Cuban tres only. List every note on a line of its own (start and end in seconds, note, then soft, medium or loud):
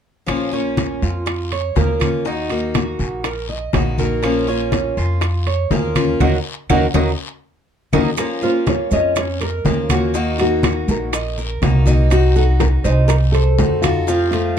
0.53 1.01 C#4 medium
1.03 1.50 F4 medium
1.52 1.76 C#5 medium
1.77 2.25 A#4 medium
2.27 2.74 D#4 medium
2.75 3.23 F#4 medium
3.25 3.49 A#4 medium
3.49 3.97 D#5 medium
3.99 4.47 A#4 medium
4.48 4.96 C#4 medium
4.98 5.45 F4 medium
5.47 5.71 C#5 medium
5.72 6.19 A#4 medium
6.20 6.36 F#4 medium
6.20 6.37 A#4 medium
6.20 6.36 D#5 medium
6.70 6.86 F#4 medium
6.70 6.86 A#4 medium
6.70 6.86 D#5 medium
6.95 7.11 F#4 medium
6.95 7.11 A#4 medium
6.95 7.11 D#5 medium
7.93 8.09 F#4 medium
7.93 8.09 A#4 medium
7.93 8.09 D#5 medium
8.43 8.90 F4 medium
8.92 9.40 C#4 medium
9.41 9.88 A#4 medium
9.90 10.14 F#4 medium
10.14 10.62 D#4 medium
10.63 11.11 F#4 medium
11.13 11.37 D#5 medium
11.38 11.85 A#4 medium
11.87 12.35 D#4 medium
12.36 12.84 F#4 medium
12.85 13.33 D#4 medium
13.34 13.82 C5 medium
13.84 14.08 A4 medium
14.09 14.56 F4 medium